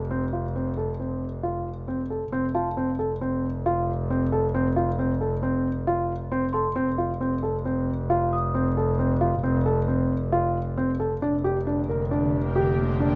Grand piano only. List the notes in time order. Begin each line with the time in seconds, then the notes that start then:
0.11 C4
0.33 F4
0.56 C4
0.77 A4
1.00 C4
1.43 F4
1.88 C4
2.10 A4
2.32 C4
2.55 F4
2.77 C4
2.99 A4
3.21 C4
3.66 F4
4.10 C4
4.32 A4
4.55 C4
4.76 F4
4.99 C4
5.21 A4
5.43 C4
5.87 F4
6.32 C4
6.54 A4
6.76 C4
6.98 F4
7.21 C4
7.43 A4
7.65 C4
8.10 F4
8.54 C4
8.77 A4
8.99 C4
9.21 F4
9.44 C4
9.66 A4
9.88 C4
10.32 F4
10.77 C4
11.00 A4
11.22 D4
11.44 G4
11.67 D4
11.89 A#4
12.11 D4
12.56 G4
13.00 D4